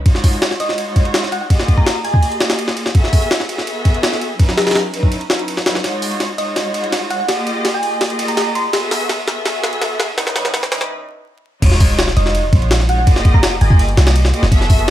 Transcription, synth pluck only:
0.60 D#5
1.32 F#5
1.41 F#5
1.77 A#5
2.05 G#5
2.14 G#5
6.38 D#5
7.10 F#5
7.20 F#5
7.74 G#5
8.28 A#5
8.55 C6
12.17 D#5
12.89 F#5
12.98 F#5
13.34 A#5
13.61 G#5
13.70 G#5

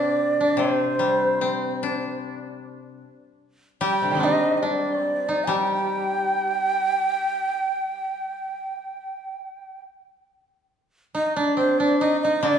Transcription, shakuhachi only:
Already playing: D5
0.59 C5
3.83 G5
4.24 D#5
4.57 D#5
4.66 D5
5.44 G#5
5.53 G5
11.17 D#5
11.38 D5
11.57 C5
11.79 D5
12.00 D#5
12.21 D#5
12.41 D5

